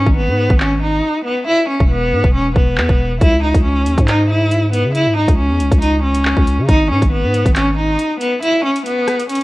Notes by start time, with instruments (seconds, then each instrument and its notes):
Already playing: cello C#4
0.06 808-style bass G#1, kick
0.16 cello B3
0.28 808-style bass G#2
0.50 808-style bass G#1, kick
0.60 cello C#4, clap
0.82 cello D#4
1.24 cello B3
1.47 cello E4
1.69 cello C#4
1.80 808-style bass E1, kick
1.91 cello B3
2.12 808-style bass G#2
2.24 808-style bass E1, kick
2.34 cello C#4
2.56 808-style bass E1, cello B3, kick
2.77 808-style bass E2, clap
2.89 808-style bass E1, kick
3.21 808-style bass C#2, cello E4, kick, closed hi-hat
3.43 cello D#4
3.54 808-style bass C#2, kick, closed hi-hat
3.64 cello C#4
3.86 808-style bass D#2, closed hi-hat
3.98 808-style bass G#2, kick, closed hi-hat
4.08 cello D#4, clap, closed hi-hat
4.30 cello E4
4.51 closed hi-hat
4.73 cello B3, closed hi-hat
4.85 808-style bass C#3
4.95 cello E4, closed hi-hat
5.06 808-style bass G#2
5.17 cello D#4
5.28 808-style bass C#2, kick, closed hi-hat
5.38 cello C#4
5.50 808-style bass E2
5.60 808-style bass C#2, closed hi-hat
5.72 808-style bass C#2, kick, closed hi-hat
5.81 cello D#4, closed hi-hat
6.03 cello C#4
6.15 closed hi-hat
6.25 clap
6.37 808-style bass C#2, kick
6.47 closed hi-hat
6.59 808-style bass C#3
6.68 808-style bass G#1, cello D#4, kick, closed hi-hat
6.91 808-style bass G#2, cello C#4
7.02 808-style bass G#1, kick, closed hi-hat
7.12 cello B3
7.24 808-style bass G#2
7.34 closed hi-hat
7.46 808-style bass G#1, kick, closed hi-hat
7.56 cello C#4, clap, closed hi-hat
7.78 cello D#4
7.99 closed hi-hat
8.20 cello B3, closed hi-hat
8.43 cello E4, closed hi-hat
8.65 cello C#4
8.76 closed hi-hat
8.86 cello B3, closed hi-hat
9.08 cross-stick, closed hi-hat
9.20 closed hi-hat
9.30 cello C#4, closed hi-hat
9.35 closed hi-hat